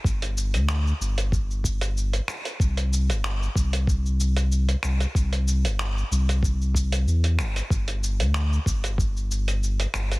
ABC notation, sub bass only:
X:1
M:4/4
L:1/16
Q:"Swing 16ths" 1/4=94
K:Clyd
V:1 name="Sub bass" clef=bass
G,,,3 D,,2 z G,,,6- G,,, z3 | C,,3 G,,,2 z C,,6- C,, z C,, z | C,,3 G,,,2 z C,,6 E,,2 G,,, z | G,,,3 D,,2 z G,,,6- G,,, z G,,, z |]